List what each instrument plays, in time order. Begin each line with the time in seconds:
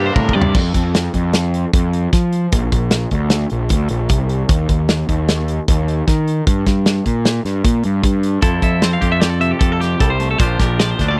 Already playing: picked electric bass G2, clean electric guitar G2 G3 A#3 D4, overdriven electric guitar C3 G3 A#3 E4, glockenspiel E6
0.06 clean electric guitar C5
0.14 picked electric bass A2, overdriven electric guitar C3 G3 A#3, clean electric guitar C3 A#4, kick, high tom
0.18 overdriven electric guitar E4
0.29 kick
0.33 picked electric bass G2, clean electric guitar G3 D5, overdriven electric guitar A#3 E4
0.38 overdriven electric guitar G3, floor tom
0.55 picked electric bass F2, kick, crash
0.74 picked electric bass F2, kick, closed hi-hat
0.95 snare, closed hi-hat
1.14 picked electric bass F2, kick, closed hi-hat
1.33 snare, closed hi-hat
1.54 closed hi-hat
1.73 picked electric bass F2, kick, closed hi-hat
1.93 closed hi-hat
2.13 picked electric bass F3, kick, snare, closed hi-hat
2.33 closed hi-hat
2.52 picked electric bass A#1, kick, closed hi-hat
2.72 picked electric bass A#1, kick, closed hi-hat
2.91 snare, closed hi-hat
3.11 picked electric bass D2, kick, closed hi-hat
3.30 snare, closed hi-hat
3.50 picked electric bass A#1, closed hi-hat
3.69 picked electric bass D2, kick, closed hi-hat
3.89 picked electric bass A#1, closed hi-hat
4.09 picked electric bass C2, kick, closed hi-hat
4.29 closed hi-hat
4.49 picked electric bass D#2, kick, closed hi-hat
4.69 picked electric bass D#2, kick, closed hi-hat
4.89 snare, closed hi-hat
5.09 picked electric bass D#2, kick, closed hi-hat
5.29 snare, closed hi-hat
5.48 closed hi-hat
5.68 picked electric bass D#2, kick, closed hi-hat
5.88 closed hi-hat
6.07 picked electric bass D#3, kick, snare, closed hi-hat
6.28 closed hi-hat
6.47 picked electric bass G2, kick, closed hi-hat
6.66 picked electric bass G2, kick, snare, closed hi-hat
6.86 snare, closed hi-hat
7.06 picked electric bass A#2, kick, closed hi-hat
7.25 snare, closed hi-hat
7.45 picked electric bass G2, snare, closed hi-hat
7.65 picked electric bass A#2, kick, closed hi-hat
7.84 picked electric bass G2, closed hi-hat
8.03 picked electric bass G2, kick, closed hi-hat
8.23 closed hi-hat
8.42 picked electric bass F2, clean electric guitar F3 E4 A4, kick, closed hi-hat
8.62 picked electric bass F2, clean electric guitar A4 E5, kick, closed hi-hat
8.82 clean electric guitar C4 C5, snare, closed hi-hat
8.93 clean electric guitar F5
9.01 picked electric bass F2, clean electric guitar G4, kick, closed hi-hat
9.12 clean electric guitar A4 E5
9.20 clean electric guitar G4 D5, snare, closed hi-hat
9.29 clean electric guitar A4
9.40 clean electric guitar C3 E5, closed hi-hat
9.51 clean electric guitar G4
9.59 picked electric bass F2, clean electric guitar A4, kick, closed hi-hat
9.72 clean electric guitar A4
9.80 clean electric guitar G4, snare, closed hi-hat
9.99 picked electric bass C2, clean electric guitar G3 A4, kick, closed hi-hat
10.10 clean electric guitar C5
10.20 clean electric guitar A3, closed hi-hat
10.31 clean electric guitar A4
10.38 picked electric bass A#1, clean electric guitar A#2 F3 D4 F4 C5, kick, closed hi-hat
10.43 clean electric guitar G4
10.59 picked electric bass A#1, clean electric guitar G4 A#4, kick, snare, closed hi-hat
10.79 clean electric guitar F3 D5, snare, closed hi-hat
10.91 clean electric guitar C5
10.99 picked electric bass D2, clean electric guitar D4, kick, snare, closed hi-hat
11.08 clean electric guitar F4 D5